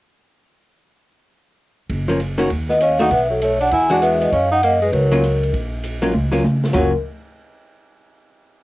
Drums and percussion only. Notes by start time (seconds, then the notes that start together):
1.90 kick, ride
2.20 hi-hat pedal, ride
2.39 ride
2.50 kick, ride
2.69 snare
2.80 hi-hat pedal, ride
3.00 ride
3.11 kick, ride
3.41 hi-hat pedal, ride
3.61 ride
3.71 kick, ride
4.02 hi-hat pedal, ride
4.21 ride
4.32 kick, ride
4.63 hi-hat pedal, ride
4.82 ride
4.93 kick, ride
5.23 hi-hat pedal, ride
5.43 ride
5.53 kick, ride
5.83 hi-hat pedal, ride
6.14 high tom
6.44 hi-hat pedal, high tom
6.64 snare
6.75 kick